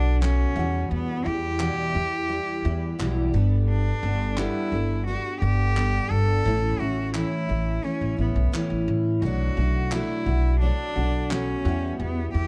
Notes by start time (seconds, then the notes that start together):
Already playing: B1 A3 D4 F#4
0.21 B2 F#3 A3 C#4 F#4, clap
0.56 E2 B2 E3 G3 E4 F#4
0.91 E2 B3
1.25 E2 E3 G3 E4 G4
1.59 E2 B2 E3 G3 E4, clap
1.95 E2 E3 G3 E4
2.29 E3 G3 E4
2.65 E2 E3 G3 E4
2.99 B1 E2 B2 E3 G3 E4, clap
3.33 G1 G3 B3 D4 A4
3.69 D4
4.03 G1 B3 D4 A4
4.37 G3 B3 D4 E4 A4, clap
4.72 G1 B3 D4 A4
5.07 G3 B3 D4 F#4 A4
5.41 G1 B3 D4 G4 A4
5.76 G3 B3 D4 A4, clap
6.11 G1 A4
6.44 A1 A2 E3 A3 C#4 E4
6.79 A1 A3 C#4 E4 F#4
7.14 A2 E3 A3 C#4 E4, clap
7.48 A1 A3 C#4 E4
7.82 E3 A3 C#4 E4
8.01 A1
8.16 A1 A3 B3 C#4 E4
8.36 B1
8.52 A2 E3 A3 C#4 E4, muted upright bass stroke, clap
8.70 A1
8.88 A2
9.22 B1 B2 F#3 A3 D4 F#4
9.56 B1 A3 D4 F#4
9.92 B2 F#3 A3 D4 E4 F#4, clap
10.26 B1 A3 D4 F#4
10.60 F#3 A3 D4 F#4
10.96 B1 A3 D4 F#4
11.29 B2 F#3 A3 C#4 F#4, clap
11.65 E2 B2 E3 G3 E4 F#4
12.00 E2 B3
12.33 E2 E3 G3 E4 G4